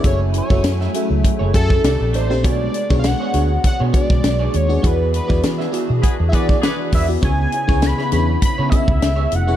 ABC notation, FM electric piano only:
X:1
M:4/4
L:1/16
Q:"Swing 16ths" 1/4=100
K:Bdor
V:1 name="FM electric piano"
[CFGAe]2 z [CFGAe]2 z [CFGAe]3 z [CFAeg]2 [=C_E=GAd]2 z [CEGA=c] | [B,DFGd]2 z [B,DFGc]2 z [B,DFGc]3 z [B,DFGd]4 z [B,DFGd] | [B,EFGd]2 z [B,EFGd]2 z [B,EFGd]3 z [B,EFGd]4 z [B,EFGd] | [B,CEGc]2 z [B,CEGc]2 z [B,CDEGc]3 z [B,CEG^de]4 z [B,CEGc] |]